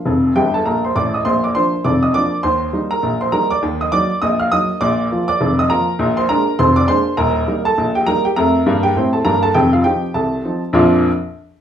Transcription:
Already playing: F4 F5
0.06 F1 F2
0.36 G1 G2 G4 G5
0.54 A4 A5
0.66 A#1 A#2 A#4 A#5
0.85 C5 C6
0.96 A1 A2 D5 D6
1.14 D#5 D#6
1.25 A#1 A#2 C5 C6
1.44 D5 D6
1.55 F3 A#3 D4 C5 C6
1.84 F1 F2 D5 D6
2.03 D#5 D#6
2.14 F3 A#3 D4 D5 D6
2.43 D#2 D#3 C5 C6
2.73 G3 A#3 D#4
2.91 A#4 A#5
3.03 A#1 A#2
3.21 C5 C6
3.32 G3 A#3 D#4 A#4 A#5
3.50 D5 D6
3.63 D#2 D#3
3.81 D#5 D#6
3.92 F#3 A#3 D#4 D5 D6
4.22 A#1 A#2 D#5 D#6
4.40 F5 F6
4.52 F#3 A#3 D#4 D#5 D#6
4.81 A#1 A#2 D5 D6
5.11 F3 A#3 F4
5.28 D5 D6
5.41 F1 F2
5.59 D#5 D#6
5.70 F3 A#3 F4 A#4 A#5
5.99 A#1 A#2
6.17 C5 C6
6.29 G#3 A#3 D4 A#4 A#5
6.59 F1 F2 C5 C6
6.76 D5 D6
6.88 G#3 A#3 D4 C5 C6
7.17 D#1 D#2 A#4 A#5
7.48 G3 A#3 D#4
7.65 A4 A5
7.78 A#1 A#2
7.95 G4 G5
8.07 G3 A#3 D#4 A#4 A#5
8.25 G4 G5
8.36 F2 A3 A#4 A#5
8.66 G2 A#3
8.83 G4 G5
8.96 A2 C4
9.13 A4 A5
9.25 G2 A#3 A#4 A#5
9.43 A4 A5
9.54 F1 F2 G4 G5
9.73 F4 F5
9.84 F3 C4 D#4 G4 G5
10.14 C2 C3 A4 A5
10.44 F3 C4 D#4
10.73 A#1 F2 F3 A#3 D4 F4 D6

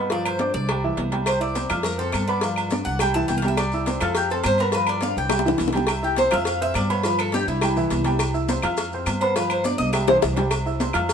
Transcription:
Already playing: G2
0.10 F3 F4 D5 F5, cowbell, high conga, low agogo
0.25 C5, high conga, low agogo, claves
0.39 D4 D5 D6, cowbell, high conga
0.54 C2 D5, high conga
0.69 G3 G4 G5, cowbell, high conga, low agogo, claves
0.84 E3 E4 E5, high conga
0.97 C2, cowbell, high conga, low timbale, low agogo
1.12 G3 G4 G5, cowbell, high conga, low agogo
1.26 C5, cowbell, low agogo, claves, maracas
1.40 E4 D5 E5 E6, high conga, maracas
1.55 C4 C5 C6, cowbell, high conga, low agogo, maracas
1.70 F2 F4 F5 F6, cowbell, high conga, low conga, low agogo, claves, maracas
1.83 A#4, cowbell, high conga, low conga, low agogo, maracas
1.98 C4 A4 C5 C6, high conga, maracas
2.12 G2, cowbell, high conga, low agogo, claves, maracas
2.27 B3 B4 D5 B5, high conga, low agogo, maracas
2.41 F3 F4 F5, cowbell, high conga, low agogo, maracas
2.56 high conga, low agogo, claves, maracas
2.70 D4 D5 D6, cowbell, high conga, maracas
2.85 C2 F#5, high conga, maracas
2.99 G3 G4 G5, cowbell, high conga, low agogo, claves, maracas
3.14 E3 E4 E5 A5, high conga, maracas
3.28 C2 G5, cowbell, high conga, low agogo, maracas
3.38 F5
3.42 G3 G4 G5, cowbell, high conga, low agogo, maracas
3.48 E5
3.57 D5, cowbell, low agogo, claves, maracas
3.72 E4 E5 E6, high conga, maracas
3.86 C4 C5 C6, cowbell, high conga, low agogo, maracas
4.01 F2 F4 A4 F5 F6, cowbell, high conga, low conga, low agogo, claves, maracas
4.15 G4, cowbell, high conga, low agogo, maracas
4.30 C4 A4 C5 C6, high conga, maracas
4.44 G2 C5, cowbell, high conga, low timbale, low agogo, claves, maracas
4.58 B3 A#4 B4 B5, high conga, low agogo, maracas
4.72 F3 F4 B4 F5, cowbell, high conga, low agogo, maracas
4.87 D5, high conga, low agogo, claves, maracas
5.01 D4 D5 F5 D6, cowbell, high conga, maracas
5.17 C2 G5, high conga, maracas
5.29 G3 G4 G5, cowbell, high bongo, high conga, low agogo, claves, maracas
5.39 high bongo
5.45 E3 E4 E5, low bongo, high conga, maracas
5.58 C2, cowbell, low bongo, high conga, low agogo, maracas
5.68 low bongo
5.73 G3 G4 G5, cowbell, high conga, low agogo, maracas
5.77 low bongo
5.87 E5, cowbell, high conga, low agogo, claves, maracas
6.03 E4 G4 E5 E6, high conga, maracas
6.16 C4 C5 C6, cowbell, high conga, low agogo, maracas
6.31 F2 F4 E5 F5 F6, cowbell, high conga, low conga, low agogo, claves, maracas
6.45 F5, cowbell, high conga, low agogo, maracas
6.61 C4 C5 E5 C6, high conga, maracas
6.74 G2 D5, cowbell, high conga, low agogo, claves, maracas
6.90 B3 B4 C#5 B5, high conga, low agogo, maracas
7.03 F3 F4 B4 F5, cowbell, high conga, low agogo, maracas
7.19 A4, high conga, low agogo, claves, maracas
7.32 D4 G4 D5 D6, cowbell, high conga, maracas
7.47 C2 E4, high conga, maracas
7.61 G3 G4 G5, cowbell, high conga, low agogo, claves, maracas
7.76 E3 E4 E5, high conga, maracas
7.90 C2, cowbell, high conga, low agogo, maracas
8.04 G3 G4 G5, cowbell, high conga, low agogo, maracas
8.19 cowbell, high conga, low agogo, claves, maracas
8.34 E4 E5 E6, high conga, maracas
8.48 C4 C5 C6, cowbell, high conga, low agogo, maracas
8.62 F2 F4 F5 F6, cowbell, high conga, low conga, low agogo, claves, maracas
8.77 cowbell, high conga, low agogo, maracas
8.92 C4 C5 C6, high conga, maracas
9.06 G2, cowbell, high conga, low timbale, low agogo, claves, maracas
9.21 B3 B4 C5 B5, high conga, low agogo, maracas
9.36 F3 F4 B4 F5, cowbell, high conga, low agogo, maracas
9.50 C5, high conga, low agogo, claves, maracas
9.64 D4 D5 D6, cowbell, high conga, maracas
9.78 C2 D#5, high conga, maracas
9.93 G3 G4 E5 G5, cowbell, low agogo, claves, maracas
10.07 E3 E4 C5 E5, high bongo, high timbale, maracas
10.22 C2, cowbell, high bongo, low conga, low agogo, maracas
10.37 G3 G4 G5, cowbell, low bongo, low conga, low timbale, low agogo, maracas
10.51 cowbell, high conga, low agogo, claves, maracas
10.66 E4 E5 E6, high conga, maracas
10.80 C4 C5 C6, cowbell, high conga, low agogo, maracas
10.93 F2 F4 F5 F6, cowbell, high conga, low conga, low agogo, claves, maracas
11.09 cowbell, high conga, low agogo, maracas

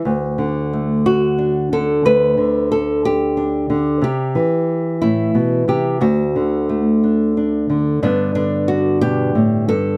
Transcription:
0.05 D2
0.38 D3
0.73 A3
1.06 F#4
1.38 D4
1.72 D3 A4
2.05 D2 B4
2.37 D3
2.72 A4
3.05 G4
3.37 D4
3.70 D3
4.02 C3 G4
4.35 E3
5.02 A2 E4
5.35 B2
5.68 C3 G4
6.01 D2 F#4
6.36 D3
6.69 A3
7.04 D4
7.37 D4
7.70 D3
8.02 G2 D3 B3 D4
8.35 D3 D4
8.68 F#4
9.01 B2 G4
9.35 A2
9.68 G2 A4

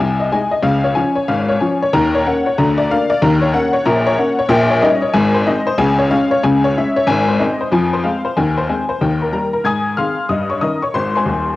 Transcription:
0.00 C2 C3 G#5
0.20 D#5
0.32 G#3 D#4 G#5
0.51 D#5
0.62 C#2 C#3 F5
0.84 C#5
0.95 F3 C#4 G#5
1.15 C#5
1.28 G#1 G#2 F5
1.49 C#5
1.60 F3 C#4 G#5
1.83 C#5
1.93 D#2 D#3 A#5
2.15 C#5
2.27 A#3 C#4 F#5
2.46 C#5
2.58 D2 D3 A#5
2.78 D5
2.91 A#3 D4 F5
3.10 D5
3.22 D#2 D#3 A#5
3.42 C#5
3.53 A#3 C#4 F#5
3.73 C#5
3.85 A#1 A#2 A#5
4.06 C#5
4.18 A#3 C#4 F#5
4.39 C#5
4.49 A#1 A#2 G5
4.70 C#5
4.82 G3 C#4 D#4 D#5
5.02 C#5
5.14 G#1 G#2 G#5
5.34 C5
5.46 G#3 C4 D#4 D#5
5.67 C5
5.78 C#2 C#3 G#5
5.99 C#5
6.10 G#3 C#4 F5
6.31 C#5
6.43 C#2 C#3 G#5
6.64 C#5
6.77 G#3 C#4 E5
6.96 C#5
7.07 G#1 G#2 G#5
7.28 C5
7.39 G#3 C4 D#4 D#5
7.61 C5
7.72 F2 F3 G#5
7.93 C5
8.04 G#3 C4 F5
8.25 C5
8.37 D#2 D#3 G#5
8.58 C5
8.69 G#3 C4 G#5
8.89 C5
9.01 D#2 D#3 G5
9.22 A#4
9.32 G3 A#3 A#5
9.53 A#4
9.64 G#2 G#5 D#6 G#6
9.97 D#3 C4 G#4 F5 C6 F6
10.29 G2 D#5 D#6
10.50 C#5 C#6
10.61 D#3 C#4 A#4 D#5 D#6
10.82 C#5 C#6
10.94 G#1 G#2 C5 C6
11.15 C5 G#5 C6
11.25 D#1 D#2

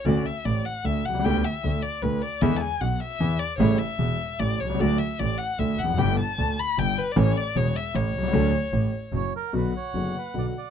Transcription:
0.05 D2 D3 A3 C#4 F#4 D5
0.26 E5
0.45 A1 A2 D5
0.66 F#5
0.84 D2 D3 E5
1.05 C2 F#5
1.10 B1
1.14 C2
1.20 C#2
1.25 D2 D3 G3 B3 G4 G5
1.45 E5
1.64 D2 D3
1.82 D5
2.02 D2 D3 B4
2.22 D5
2.41 E2 D3 E3 G#3 B3 E4 E5
2.56 A5
2.60 G#5
2.80 B1 B2 F#5
3.00 E5
3.20 E2 E3
3.39 D5
3.59 A1 A2 C#3 G3 A3 E4 C#5
3.78 E5
3.99 E1 E2
4.39 A1 A2 D5
4.59 C2 C#5
4.65 B1
4.70 C2
4.74 C#2
4.79 D2 D3 F#3 A3 F#4 D5
4.98 E5
5.19 A1 A2 D5
5.38 F#5
5.59 D2 D3 E5
5.79 F1 F#5
5.84 E2
5.89 F2
5.94 F#2 D3 B3
5.98 G1 G2 A3 G4 G5
6.20 A5
6.38 D2 D3
6.60 B5
6.78 G1 G2 G5
6.98 B4
7.12 D5
7.16 A1 A2 E3 A3 C#4 A4 C#5
7.37 D5
7.56 E1 E2 C#5
7.76 E5
7.95 A1 A2 C#5
8.14 C2
8.18 B1
8.23 C2
8.28 C#2
8.33 D2 D3 F#3 A3 D4 A4
8.72 A1 A2
9.12 F#1 F#2 F#3 C#5
9.36 A#4
9.53 B1 B2 D3 F#3 B3 F#4 B4 F#5
9.76 C#5
9.94 F#1 F#2 D3 F#3 B3 F#4
10.18 B4
10.34 B1 B2 D3 F#3 B3 F#4 D5
10.58 D5

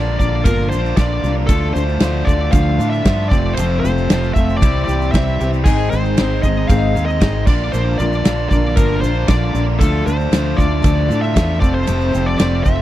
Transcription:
Already playing: A#1 A#2 D3 F3 A#3 D4 F4 D5
0.19 A#1 A#3 D4 F4 D5, kick, shaker
0.44 G1 A#2 F3 A#3 D4 F4 A#4, kick, ride bell, shaker
0.70 A#1 D4 F4 C5, shaker
0.74 A#3
0.86 shaker
0.96 A#1 A#2 D3 F3 A#3 D4 F4 D5, kick, snare, ride bell, shaker
1.23 C2 A#3 D4 F4, snare, shaker
1.47 D2 D3 F3 A3 D4 F4 A4, kick, ride bell, shaker
1.74 D2 A3 D4 F4 C5, shaker
1.89 shaker
2.00 D2 D3 F3 A3 D4 F4, snare, ride bell, shaker
2.25 D2 A3 D4 F4 D5, kick, shaker
2.52 D2 D3 F3 A3 D4 F4 F5, kick, ride bell, shaker
2.78 A2 A3 D4 F4, shaker
2.90 E5, shaker
3.05 G2 D3 F3 A3 D4 F4, kick, snare, ride bell, shaker
3.29 F1 A3 C4 F4 D5, kick, snare, shaker
3.33 F2 C3 F3
3.54 F1 F2 C5, ride bell
3.59 C3 F3 A3 C4 F4, shaker
3.80 C5
3.84 F1 F3 A3 C4 F4, snare, shaker
3.98 shaker
4.10 F1 F3 A3 C4 F4, snare, ride bell, shaker
4.24 shaker
4.34 F1 C4 F4 E5, kick, shaker
4.38 F3 A3
4.49 shaker
4.57 D5
4.61 C2 C3 E3 G3 C4 E4 G4, kick, ride bell, shaker
4.85 C2 G4 D5, shaker
4.89 G3 C4 E4
5.02 shaker
5.12 C2 C3 E3 G3 C4 E4 G4 E5, kick, snare, ride bell, shaker
5.27 shaker
5.40 C2 G3 C4 E4 G4, shaker
5.53 shaker
5.64 G#1 G#2 D#3 G#3 C4 D#4 G#4, kick, crash, shaker
5.90 G#1 G#3 C4 D#4 G#4 C5, snare, shaker
6.05 shaker
6.17 G#1 G#3 C4 D#4 G#4, snare, ride bell, shaker
6.42 G#1 G#3 C4 D#4 G#4 D#5, kick, shaker
6.68 G#1 G#2 D#3 G#3 C4 D#4 G#4 F5, kick, ride bell, shaker
6.95 D#2 G#3 C4 D#4 G#4, shaker
7.06 D#5, shaker
7.21 G#1 G#2 D#3 G#3 C4 D#4 G#4, kick, snare, ride bell, shaker
7.47 A#1 A#2 D3 A#3 D4 F4 D5, kick, crash, shaker
7.72 A#1 A#2 D3 F3 A#3 D4 F4 C5, shaker
7.98 A#1 D4 F4 D5, shaker
8.02 A#3
8.13 shaker
8.24 A#1 D3 F3 A#3 D4 F4, snare, ride bell, shaker
8.49 A#1 F4 D5, kick, shaker
8.54 A#3 D4
8.76 G1 A#2 F3 A#3 D4 F4 A#4, kick, ride bell, shaker
8.96 A#4
9.01 A#1 F4 C5, shaker
9.06 A#3 D4
9.28 A#1 A#2 D3 F3 A#3 D4 F4 D5, kick, snare, ride bell, shaker
9.54 A#1 A#3 D4 F4, shaker
9.79 D2 D3 F3 A3 D4 F4 A4, kick, ride bell, shaker
10.06 D2 A3 D4 F4 C5, shaker
10.20 shaker
10.31 D2 D3 F3 A3 D4 F4, snare, ride bell, shaker
10.57 D2 A3 D4 F4 D5, kick, shaker
10.82 D2 D3 F3 A3 D4 F4, kick, ride bell, shaker
11.09 A2 A3 D4 F4, shaker
11.21 E5, shaker
11.34 E2 D3 F3 A3 D4 F4, kick, snare, ride bell, shaker
11.60 F1 F2 C3 F3 A3 C4 F4 A4 D5, kick, shaker
11.74 C5
11.87 F1 F2 C3 F3 A3 C4 F4 A4, ride bell, shaker
12.01 shaker
12.12 F1 F3 A3 C4 A4, snare, shaker
12.26 D5
12.37 F1 F3 A3 C4 A4 D5, snare, ride bell, shaker
12.42 F4
12.63 F1 F3 A3 C4 A4 E5, kick, shaker

